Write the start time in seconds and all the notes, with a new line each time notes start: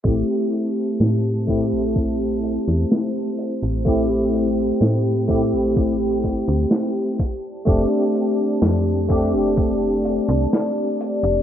0.04 A1 A3 C4 E4 G4 C5 A5, kick, closed hi-hat
0.53 closed hi-hat
1.00 A2, snare, closed hi-hat
1.47 A3 C4 E4 G4, kick, closed hi-hat
1.72 A1
1.95 kick, closed hi-hat
2.44 closed hi-hat
2.68 E2
2.91 snare, closed hi-hat
3.39 closed hi-hat
3.63 A1
3.85 A3 C4 E4 G4 G5, kick, closed hi-hat
4.34 closed hi-hat
4.81 A2, snare, closed hi-hat
5.28 A3 C4 E4 G4, kick, closed hi-hat
5.53 A1
5.77 kick, closed hi-hat
6.24 G1, kick, closed hi-hat
6.48 D2
6.71 snare, closed hi-hat
7.19 D5 A5, kick, closed hi-hat
7.65 F1 A3 C4 D4 G4, kick, closed hi-hat
8.15 closed hi-hat
8.62 F2, snare, closed hi-hat
9.08 A3 C4 D4 G4, kick, closed hi-hat
9.34 F1
9.57 kick, closed hi-hat
10.05 closed hi-hat
10.29 C2
10.53 snare, closed hi-hat
11.01 closed hi-hat
11.23 F1